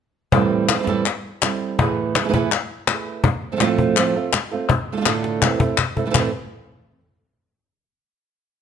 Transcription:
0.32 0.68 A2 medium
0.32 0.68 E3 medium
0.32 0.69 G3 medium
0.32 0.69 C4 medium
0.32 0.69 E4 medium
0.32 0.68 A4 medium
0.32 cajon bass loud
0.51 cajon slap soft
0.69 0.73 G3 soft
0.69 0.73 C4 soft
0.69 0.74 E4 soft
0.69 0.74 A4 soft
0.69 cajon slap medium
0.69 clap medium
0.74 0.77 E3 soft
0.74 0.78 G3 soft
0.74 0.78 C4 medium
0.74 0.78 E4 medium
0.74 0.78 A4 medium
0.79 0.82 E3 medium
0.79 0.82 G3 medium
0.79 0.82 C4 medium
0.79 0.83 E4 medium
0.79 0.83 A4 medium
0.83 0.87 E3 medium
0.83 0.87 G3 medium
0.83 0.87 C4 medium
0.83 0.87 E4 medium
0.83 0.87 A4 medium
0.87 1.05 A2 medium
0.87 1.05 E3 medium
0.87 1.05 G3 medium
0.87 1.05 C4 medium
0.87 1.05 E4 medium
0.87 1.05 A4 medium
0.87 cajon bass medium
0.87 cajon slap soft
1.06 muted nylon-string guitar stroke medium
1.06 clap medium
1.42 1.78 G3 soft
1.42 1.78 C4 medium
1.42 1.78 E4 medium
1.42 1.79 A4 medium
1.42 cajon slap medium
1.42 clap medium
1.78 2.14 A2 medium
1.78 2.14 E3 medium
1.78 2.15 A3 medium
1.78 2.15 E4 medium
1.78 2.15 G#4 medium
1.78 2.14 B4 loud
1.78 cajon bass loud
2.15 2.19 A3 soft
2.15 2.19 E4 medium
2.15 2.20 G#4 soft
2.15 2.20 B4 medium
2.15 cajon slap loud
2.15 clap medium
2.20 2.23 E3 medium
2.20 2.23 A3 medium
2.20 2.24 E4 medium
2.20 2.24 G#4 medium
2.20 2.24 B4 medium
2.24 2.28 E3 medium
2.24 2.28 A3 medium
2.24 2.28 E4 medium
2.24 2.29 G#4 medium
2.24 2.29 B4 medium
2.29 2.32 E3 medium
2.29 2.33 A3 medium
2.29 2.33 E4 medium
2.29 2.33 G#4 medium
2.29 2.33 B4 medium
2.33 2.50 A2 medium
2.33 2.51 E3 medium
2.33 2.51 A3 medium
2.33 2.51 E4 medium
2.33 2.51 G#4 medium
2.33 2.51 B4 medium
2.33 cajon bass medium
2.52 muted nylon-string guitar stroke medium
2.52 clap medium
2.87 3.23 A3 soft
2.87 3.23 E4 medium
2.87 3.24 G#4 medium
2.87 3.24 B4 medium
2.87 cajon slap medium
2.87 clap medium
3.24 muted nylon-string guitar stroke medium
3.24 cajon bass loud
3.24 clap soft
3.42 cajon slap soft
3.52 3.55 F3 medium
3.52 3.56 A3 medium
3.52 3.56 C4 medium
3.52 3.56 F4 medium
3.52 3.56 A4 medium
3.56 3.60 F3 medium
3.56 3.60 A3 medium
3.56 3.60 C4 medium
3.56 3.61 F4 medium
3.56 3.61 A4 medium
3.60 3.96 A2 medium
3.60 3.96 F3 medium
3.60 3.96 A3 medium
3.60 3.97 C4 medium
3.60 3.97 F4 medium
3.60 3.97 A4 medium
3.60 cajon slap medium
3.60 clap medium
3.78 cajon bass medium
3.96 4.14 A2 medium
3.96 4.15 F3 medium
3.96 4.15 A3 medium
3.96 4.15 C4 medium
3.96 4.15 F4 medium
3.96 4.14 A4 medium
3.96 clap medium
4.16 4.33 A3 soft
4.16 4.33 C4 soft
4.16 4.33 F4 medium
4.16 4.33 A4 medium
4.33 muted nylon-string guitar stroke medium
4.33 cajon slap medium
4.33 clap medium
4.51 4.70 A3 soft
4.51 4.69 C4 soft
4.51 4.69 F4 soft
4.51 4.69 A4 medium
4.69 muted nylon-string guitar stroke medium
4.69 cajon bass medium
4.92 4.95 D3 soft
4.92 4.96 A3 soft
4.92 4.96 D4 medium
4.92 4.96 F4 medium
4.92 4.97 A4 medium
4.97 5.00 D3 medium
4.97 5.00 A3 medium
4.97 5.01 D4 medium
4.97 5.01 F4 medium
4.97 5.01 A4 medium
5.01 5.05 D3 medium
5.01 5.05 A3 medium
5.01 5.05 D4 medium
5.01 5.05 F4 medium
5.01 5.06 A4 medium
5.06 5.41 A2 medium
5.06 5.41 D3 medium
5.06 5.41 A3 medium
5.06 5.41 D4 medium
5.06 5.41 F4 medium
5.06 5.42 A4 loud
5.06 cajon slap medium
5.06 clap medium
5.24 cajon slap medium
5.42 5.59 A2 medium
5.42 5.60 E3 medium
5.42 5.60 A3 medium
5.42 5.60 C4 medium
5.42 5.60 E4 medium
5.42 5.59 A4 medium
5.42 cajon bass medium
5.42 clap medium
5.60 5.78 A3 soft
5.60 5.78 C4 soft
5.60 5.78 E4 medium
5.60 5.77 A4 medium
5.60 cajon bass medium
5.78 muted nylon-string guitar stroke medium
5.78 cajon bass medium
5.78 clap medium
5.96 6.05 A3 soft
5.96 6.05 C4 soft
5.96 6.06 E4 medium
5.96 6.06 A4 medium
5.96 cajon bass medium
6.06 6.09 E3 medium
6.06 6.09 A3 medium
6.06 6.10 C4 medium
6.06 6.10 E4 medium
6.06 6.10 A4 medium
6.10 6.14 E3 medium
6.10 6.14 A3 medium
6.10 6.14 C4 medium
6.10 6.15 E4 medium
6.10 6.15 A4 medium
6.15 6.29 A2 medium
6.15 6.29 E3 medium
6.15 6.29 A3 medium
6.15 6.29 C4 medium
6.15 6.29 E4 medium
6.15 6.29 A4 medium
6.15 cajon bass loud
6.15 clap medium

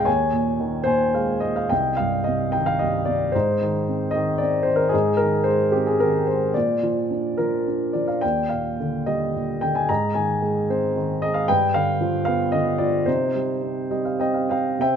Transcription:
0.05 1.67 D#2 medium
0.05 1.38 C#5 medium
0.05 0.84 G#5 medium
0.32 0.84 A#2 soft
0.59 1.68 D#3 soft
0.84 1.42 A#2 soft
0.84 1.38 C5 medium
0.84 1.12 G#5 medium
1.14 1.69 G#3 soft
1.14 1.41 F5 medium
1.40 1.70 A#2 soft
1.40 1.56 D#5 medium
1.56 1.70 F5 medium
1.69 3.31 C2 medium
1.69 2.22 D#5 soft
1.69 1.99 G5 medium
1.97 2.80 G2 soft
1.97 2.24 F5 medium
2.24 3.06 C3 soft
2.24 2.54 D#5 medium
2.52 3.32 D#3 soft
2.52 2.66 G5 medium
2.66 2.81 F5 medium
2.79 3.33 G2 soft
2.79 3.08 D#5 medium
3.05 3.34 C3 soft
3.05 3.34 D5 medium
3.32 4.89 G#2 medium
3.32 4.11 D#4 medium
3.32 4.16 C5 medium
3.62 4.14 D#3 soft
3.88 4.40 C4 soft
4.11 4.40 D#5 medium
4.15 4.66 D#3 medium
4.38 4.92 C4 soft
4.38 4.66 D5 medium
4.63 4.78 C5 medium
4.68 4.93 D#3 soft
4.76 4.91 A#4 medium
4.89 5.19 G#4 medium
4.93 6.51 G#2 medium
4.93 5.71 D#4 medium
5.17 6.01 D#3 soft
5.17 5.46 A#4 medium
5.44 6.27 G#3 soft
5.44 5.71 C5 medium
5.72 6.53 C4 soft
5.72 5.87 G4 medium
5.87 6.01 G#4 medium
6.00 6.54 D#3 soft
6.00 6.25 A#4 medium
6.27 6.54 G#3 soft
6.27 6.52 C5 medium
6.54 8.19 A#2 medium
6.54 7.36 F4 soft
6.54 7.41 D5 medium
6.83 7.37 F3 soft
7.11 7.66 D4 soft
7.37 7.93 F3 soft
7.37 7.90 A#4 medium
7.67 8.22 D4 soft
7.93 8.22 F3 soft
7.93 8.09 D5 medium
8.08 8.23 F5 medium
8.21 9.85 D#2 medium
8.21 9.03 D5 soft
8.21 8.52 G5 medium
8.49 9.34 A#2 soft
8.49 8.76 F5 medium
8.80 9.62 D3 soft
9.06 9.86 G3 soft
9.06 9.58 D#5 medium
9.35 9.87 A#2 soft
9.61 9.88 D3 soft
9.61 9.74 G5 medium
9.75 9.89 G#5 medium
9.89 11.45 G#2 medium
9.89 10.66 D#5 medium
9.89 10.13 A#5 medium
10.14 10.95 D#3 soft
10.14 10.40 G#5 medium
10.42 11.21 G#3 soft
10.70 11.46 C4 soft
10.70 11.24 C5 medium
10.96 11.47 D#3 soft
11.22 11.48 G#3 soft
11.22 11.36 D#5 medium
11.34 11.48 F5 medium
11.48 13.04 G2 medium
11.48 12.23 B4 medium
11.48 11.76 G5 medium
11.74 12.52 D3 soft
11.74 12.24 F5 medium
12.01 12.79 F3 soft
12.25 13.05 B3 medium
12.25 12.54 F5 medium
12.52 13.06 D3 soft
12.52 12.80 D#5 medium
12.78 13.06 F3 soft
12.78 13.07 D5 medium
13.06 14.76 C3 medium
13.06 14.17 D#4 soft
13.06 14.16 C5 medium
13.35 13.89 G3 soft
13.62 14.18 C4 soft
13.91 14.48 G3 soft
13.91 14.05 D#5 medium
14.05 14.19 F5 soft
14.19 14.77 C4 soft
14.19 14.52 D#5 medium
14.19 14.34 G5 soft
14.34 14.49 F5 soft
14.49 14.78 G3 soft
14.49 14.81 F5 medium
14.49 14.77 G5 soft
14.79 14.96 C3 soft
14.79 14.96 C5 medium
14.79 14.96 E5 medium
14.79 14.96 G5 medium

